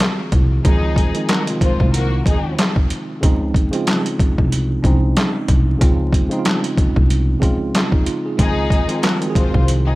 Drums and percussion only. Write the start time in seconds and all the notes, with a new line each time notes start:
0.00 snare, clap, closed hi-hat
0.32 kick, closed hi-hat
0.65 kick, closed hi-hat
0.96 kick, closed hi-hat
1.15 closed hi-hat
1.29 snare, clap, closed hi-hat
1.47 closed hi-hat
1.61 kick, closed hi-hat
1.80 kick
1.94 closed hi-hat
2.26 kick, closed hi-hat
2.59 snare, clap, closed hi-hat
2.76 kick
2.90 closed hi-hat
3.23 kick, closed hi-hat
3.54 kick, closed hi-hat
3.73 closed hi-hat
3.87 snare, clap, closed hi-hat
4.06 closed hi-hat
4.19 kick, closed hi-hat
4.38 kick
4.52 closed hi-hat
4.84 kick, closed hi-hat
5.17 snare, clap, closed hi-hat
5.48 kick, closed hi-hat
5.81 kick, closed hi-hat
6.13 kick, closed hi-hat
6.31 closed hi-hat
6.45 snare, clap, closed hi-hat
6.64 closed hi-hat
6.78 kick, closed hi-hat
6.96 kick
7.10 closed hi-hat
7.42 kick, closed hi-hat
7.75 snare, clap, closed hi-hat
7.92 kick
8.06 closed hi-hat
8.39 kick, closed hi-hat
8.70 kick, closed hi-hat
8.89 closed hi-hat
9.03 snare, clap, closed hi-hat
9.22 closed hi-hat
9.35 kick, closed hi-hat
9.54 kick
9.68 closed hi-hat